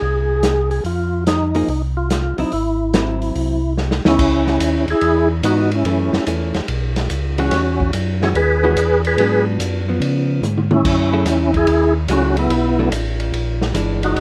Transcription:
Already playing: G#4
0.01 C2
0.43 snare, closed hi-hat
0.71 G#4, open hi-hat
0.84 F2 F4, open hi-hat
1.27 D#4, snare, closed hi-hat
1.55 F3 A#3 D#4 G#4, open hi-hat
1.68 C2 D#4, open hi-hat
1.97 F4
2.10 F4, snare, closed hi-hat
2.38 C2 F#3 C4 D#4 E4, open hi-hat
2.52 G#1 E4, open hi-hat
2.94 F#3 C4 E4, snare, closed hi-hat
3.22 open hi-hat
3.35 C2, open hi-hat
3.78 snare
3.91 snare
4.05 D2 E3 B3 C#4 D#4 E4, snare
4.18 C#2, kick, crash
4.47 snare
4.60 D#2, hi-hat pedal, ride
4.88 D#2 E4 G#4, ride
5.01 E2, ride
5.43 G#2 E3 B3 D#4 F#4, hi-hat pedal, ride
5.71 C#4 E4, ride
5.85 F#2 E3 A3 C#4, ride
6.13 F#2, snare
6.27 E2 E3 A3 C#4, hi-hat pedal, ride
6.54 E2, snare, ride
6.68 B1, ride
6.96 snare, ride
7.10 C#2, hi-hat pedal, ride
7.38 E3 G#3 C#4 F#4, ride
7.51 E2, snare, ride
7.80 kick
7.93 F#2, hi-hat pedal, ride
8.22 E3 G#3 C#4 E4 F#4 G#4, snare
8.35 D#2 G#4 B4, ride
8.64 E3 G#3 C#4 F#4
8.76 E2, hi-hat pedal, ride
9.05 G#4 B4, ride
9.17 G#2 F#3 B3 D4, ride
9.59 F#2, hi-hat pedal, ride
9.88 F3 B3
10.00 C#3, ride
10.42 G#2, hi-hat pedal, mid tom
10.58 mid tom
10.71 C#4 E4, mid tom
10.85 F#2, kick, crash
11.13 F#3 A3 E4 G#4
11.25 E2, snare, hi-hat pedal, ride
11.54 E4 G#4, kick, ride
11.67 D#2, ride
12.08 C#2 F#3 A3 C#4 E4 F#4 G#4, hi-hat pedal, ride
12.37 B3 E4, ride
12.49 B1, ride
12.79 F#3 A3 D4
12.91 A1, hi-hat pedal, ride
13.20 ride
13.32 A#1, ride
13.61 snare
13.74 G1 E3 G#3 D4, hi-hat pedal, ride
14.03 D#4 F#4, ride
14.16 A1, ride

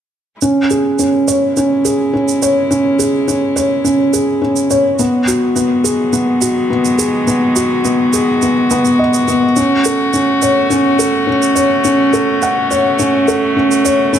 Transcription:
0.40 G#3 C#4 E4, shaker
0.70 G#4, shaker
0.99 C#4, shaker
1.28 C#5, shaker
1.57 C#4, shaker
1.85 G#4, shaker
2.13 C#4
2.28 shaker
2.42 C#5, shaker
2.71 C#4, shaker
2.99 G#4, shaker
3.28 C#4, shaker
3.56 C#5, shaker
3.84 C#4, shaker
4.13 G#4, shaker
4.42 C#4
4.56 shaker
4.70 C#5, shaker
4.99 D#3 F#3 G#3 B3 F#4, shaker
5.27 F#4, shaker
5.56 B3, shaker
5.84 G#4, shaker
6.13 B3, shaker
6.41 F#4, shaker
6.70 B3
6.85 shaker
6.98 G#4, shaker
7.27 B3, shaker
7.56 F#4, shaker
7.85 B3, shaker
8.13 G#4, shaker
8.42 B3, shaker
8.71 B3, shaker
8.85 shaker
8.99 D#5
9.14 shaker
9.28 B3, shaker
9.56 A3 C#4, shaker
9.84 A4, shaker
10.13 C#4, shaker
10.42 C#5, shaker
10.70 C#4, shaker
10.99 A4, shaker
11.27 C#4
11.42 shaker
11.55 C#5, shaker
11.84 C#4, shaker
12.13 A4, shaker
12.42 F#5, shaker
12.71 C#5, shaker
12.99 C#4, shaker
13.28 A4, shaker
13.56 C#4
13.71 shaker
13.85 C#5, shaker
14.13 C#4 E4, shaker

